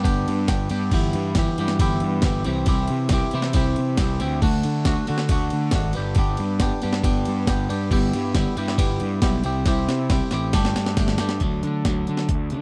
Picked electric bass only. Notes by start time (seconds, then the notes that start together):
0.04 G1
0.28 G2
0.48 G1
0.71 G2
0.92 G1
1.14 G2
1.36 G1
1.59 G2
1.79 G1
2.03 G2
2.23 G1
2.47 C2
2.67 C2
2.90 C3
3.11 C2
3.34 C3
3.54 C2
3.78 C3
3.98 C2
4.22 D2
4.42 D2
4.65 D3
4.86 D2
5.10 D3
5.29 D2
5.53 D3
5.72 G#1
5.97 G1
6.16 G1
6.40 G2
6.60 G1
6.84 G2
7.04 G1
7.28 G2
7.47 G1
7.71 G2
7.91 G1
8.14 G2
8.34 G1
8.58 G2
8.78 G1
9.01 G2
9.22 B1
9.45 C2
9.66 C2
9.89 C3
10.10 C2
10.32 A1
10.54 G1
10.76 G2
10.97 G1
11.21 G2
11.41 D2
11.63 D3
11.85 D2
12.09 D3
12.29 D2
12.52 D3